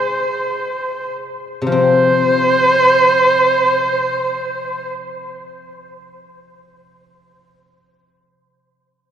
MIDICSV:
0, 0, Header, 1, 3, 480
1, 0, Start_track
1, 0, Tempo, 500000
1, 8749, End_track
2, 0, Start_track
2, 0, Title_t, "Erhu"
2, 0, Program_c, 0, 110
2, 0, Note_on_c, 0, 72, 73
2, 1056, Note_off_c, 0, 72, 0
2, 1655, Note_on_c, 0, 72, 71
2, 4685, Note_off_c, 0, 72, 0
2, 8749, End_track
3, 0, Start_track
3, 0, Title_t, "Guzheng"
3, 0, Program_c, 1, 107
3, 0, Note_on_c, 1, 48, 54
3, 0, Note_on_c, 1, 60, 35
3, 0, Note_on_c, 1, 63, 39
3, 0, Note_on_c, 1, 68, 38
3, 194, Note_off_c, 1, 48, 0
3, 216, Note_off_c, 1, 60, 0
3, 833, Note_off_c, 1, 63, 0
3, 1422, Note_off_c, 1, 68, 0
3, 1552, Note_on_c, 1, 48, 39
3, 1600, Note_on_c, 1, 53, 38
3, 1651, Note_on_c, 1, 60, 41
3, 6547, Note_off_c, 1, 60, 0
3, 7840, Note_off_c, 1, 53, 0
3, 7916, Note_off_c, 1, 48, 0
3, 8749, End_track
0, 0, End_of_file